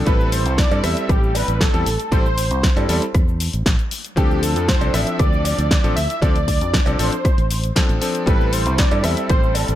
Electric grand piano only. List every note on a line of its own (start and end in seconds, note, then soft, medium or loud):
0.05 0.67 G3 medium
0.05 0.68 C4 medium
0.05 0.68 E4 medium
0.05 0.68 A4 loud
0.71 0.80 G3 medium
0.71 0.81 C4 medium
0.71 0.81 E4 medium
0.71 0.81 A4 medium
0.83 1.70 G3 medium
0.83 1.71 C4 medium
0.83 1.71 E4 medium
0.83 1.71 A4 medium
1.73 1.86 G3 medium
1.73 1.86 C4 medium
1.73 1.86 E4 medium
1.73 1.87 A4 loud
2.11 2.25 G3 medium
2.11 2.25 C4 medium
2.11 2.25 E4 medium
2.11 2.25 A4 loud
2.76 2.87 G3 medium
2.76 2.87 C4 medium
2.76 2.87 E4 medium
2.76 2.87 A4 medium
2.89 3.02 G3 medium
2.89 3.02 C4 medium
2.89 3.02 E4 medium
2.89 3.03 A4 loud
4.16 4.78 F3 medium
4.16 4.78 C4 medium
4.16 4.78 D4 medium
4.16 4.79 A4 loud
4.81 4.91 F3 medium
4.81 4.91 C4 medium
4.81 4.91 D4 medium
4.81 4.91 A4 medium
4.93 5.80 F3 medium
4.93 5.81 C4 medium
4.93 5.81 D4 medium
4.93 5.81 A4 medium
5.83 5.96 F3 medium
5.83 5.96 C4 medium
5.83 5.97 D4 medium
5.83 5.97 A4 loud
6.21 6.35 F3 loud
6.21 6.35 C4 medium
6.21 6.35 D4 medium
6.21 6.35 A4 loud
6.86 6.97 F3 medium
6.86 6.97 C4 medium
6.86 6.97 D4 medium
6.86 6.98 A4 medium
6.99 7.12 F3 medium
6.99 7.12 C4 medium
6.99 7.12 D4 medium
6.99 7.13 A4 loud
7.76 7.98 F3 medium
7.76 7.99 C4 medium
7.76 7.99 D4 medium
7.76 7.99 A4 medium
8.01 8.24 F3 medium
8.01 8.24 C4 medium
8.01 8.24 D4 medium
8.01 8.24 A4 medium
8.26 8.88 G3 loud
8.26 8.88 C4 medium
8.26 8.89 E4 medium
8.26 8.89 A4 loud
8.91 9.01 G3 medium
8.91 9.01 C4 medium
8.91 9.01 E4 medium
8.91 9.01 A4 medium
9.03 9.75 G3 medium
9.03 9.75 C4 medium
9.03 9.75 E4 medium
9.03 9.75 A4 medium